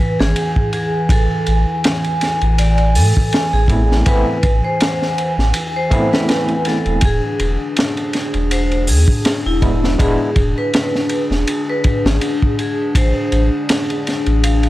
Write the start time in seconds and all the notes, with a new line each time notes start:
Already playing: E3 B4 G#5
0.19 G#1 G#4, snare
0.36 ride
0.56 kick
0.73 G#4, ride
1.09 A1 A4, kick, ride
1.46 A1, ride
1.84 snare, ride
2.04 ride
2.21 snare, ride
2.41 A1, ride
2.58 D5, ride
2.78 ride
2.95 A2 A4, open hi-hat
3.17 kick
3.32 snare, ride
3.53 A1 G#4
3.68 A3 B3 C4 E4, kick, ride
3.92 snare
4.06 A1 A3 B3 C4 E4 B4, kick, ride
4.43 A1, kick, ride
4.64 C5
4.80 snare, ride
5.02 snare
5.18 ride
5.38 A1, snare
5.54 ride
5.76 C5
5.90 A3 B3 C4 E4, kick, ride
6.13 B4, snare
6.29 snare, ride
6.48 ride
6.65 A4, snare, ride
6.86 E1, ride
7.01 E1 D4 G#4, kick, ride
7.05 G#4
7.40 E1, ride
7.77 snare, ride
7.97 ride
8.13 snare, ride
8.34 E1, ride
8.51 C5, ride
8.72 ride
8.87 E2 G#4, open hi-hat
9.08 kick
9.25 snare, ride
9.46 E1 E4
9.62 G#3 B3 D4 E4, kick, ride
9.84 snare
9.98 E1 G#3 B3 D4 E4 G#4, kick, ride
10.36 E1, kick, ride
10.58 B4
10.74 snare, ride
10.95 snare
11.09 ride
11.30 E1, snare
11.47 ride
11.69 B4
11.84 kick, ride
12.05 G#1 G#4, snare
12.21 ride
12.42 kick
12.59 G#4, ride
12.95 A1 C5, kick, ride
13.32 A1, ride
13.69 snare, ride
13.90 ride
14.07 snare, ride
14.26 A1, ride
14.44 F5, ride
14.63 ride